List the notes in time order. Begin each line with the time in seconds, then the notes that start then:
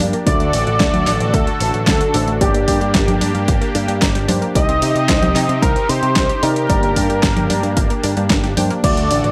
Already playing: A#3 D4 G4 D5
0.00 G2 D4, open hi-hat, high conga
0.13 A#3, closed hi-hat
0.26 D2 D3 F#3 A3 D4 F#4 A4 D5, kick, closed hi-hat
0.40 A3, closed hi-hat
0.53 A1 D4, open hi-hat
0.67 A1 F#4, closed hi-hat
0.80 D2 A4, kick, snare, clap, closed hi-hat
0.94 F#4, closed hi-hat, high conga
1.07 A1 D4, clap, open hi-hat
1.20 A1 A3, closed hi-hat
1.34 D2 A3 A4, kick, closed hi-hat
1.47 A3, closed hi-hat
1.60 A1 D4, open hi-hat
1.74 A1 F#4, closed hi-hat
1.87 D2 A4, kick, snare, clap, closed hi-hat
2.01 F#4, closed hi-hat
2.14 A1 A3 D4 F#4 C5, open hi-hat
2.27 A3, closed hi-hat
2.41 G1 G3 A#3 D4 G4 D5, kick, closed hi-hat
2.54 A#3, closed hi-hat
2.67 G2 D4, kick, open hi-hat
2.81 G2 G4, closed hi-hat
2.94 G1 A#4, kick, snare, clap, closed hi-hat
3.08 G4, closed hi-hat, high conga
3.21 G2 D4, open hi-hat
3.35 G2 A#3, closed hi-hat
3.48 G1 A#3, kick, closed hi-hat
3.61 A#3, closed hi-hat
3.75 G2 D4, open hi-hat
3.88 G2 G4, closed hi-hat
4.01 G1 A#4, kick, snare, clap, closed hi-hat
4.15 G4, snare, closed hi-hat
4.28 G2 A#3 D4 G4 C5, open hi-hat, high conga
4.42 A#3, closed hi-hat
4.55 C2 G3 C4 D#4 G4 D#5, kick, closed hi-hat
4.69 C4, closed hi-hat
4.82 C3 D#4, open hi-hat
4.95 C3 G4, closed hi-hat
5.09 C2 C5, kick, snare, clap, closed hi-hat
5.22 G4, closed hi-hat, high conga
5.36 C3 D#4, clap, open hi-hat
5.49 C3 C4, closed hi-hat
5.62 C2 C4 A#4, kick, closed hi-hat
5.76 C4, closed hi-hat
5.89 C3 D#4 C5, open hi-hat
6.02 C3 G4, closed hi-hat
6.16 C2 C5, kick, snare, clap, closed hi-hat
6.29 G4, closed hi-hat
6.43 C3 C4 D#4 G4 A#4 D5, open hi-hat
6.56 C4, closed hi-hat
6.69 G1 G3 A#3 D4 G4 D5, kick, closed hi-hat
6.83 A#3, closed hi-hat
6.96 G2 D4, kick, open hi-hat
7.10 G2 G4, closed hi-hat
7.23 G1 A#4, kick, snare, clap, closed hi-hat
7.36 G4, closed hi-hat, high conga
7.50 G2 D4, open hi-hat
7.63 G2 A#3, closed hi-hat
7.77 G1 A#3, kick, closed hi-hat, swell
7.90 A#3, closed hi-hat
8.03 G2 D4, open hi-hat
8.17 G2 G3, closed hi-hat
8.30 G1 A#4, kick, snare, clap, closed hi-hat
8.44 G4, snare, closed hi-hat
8.57 G2 A#3 D4 G4 C5 G5, open hi-hat, high conga
8.71 A#3, closed hi-hat
8.84 D2 D3 F#3 A3 D4 F#4 A4 D5, kick, closed hi-hat, crash
8.97 A3, closed hi-hat
9.11 A1 D4, open hi-hat
9.24 A1 F#4, closed hi-hat